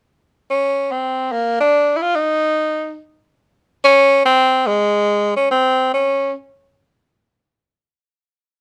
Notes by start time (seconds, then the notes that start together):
0.51 C#4
0.91 C4
1.32 A#3
1.60 D4
1.96 E4
2.02 F4
2.15 D#4
3.84 C#4
4.25 C4
4.67 G#3
5.36 C#4
5.51 C4
5.94 C#4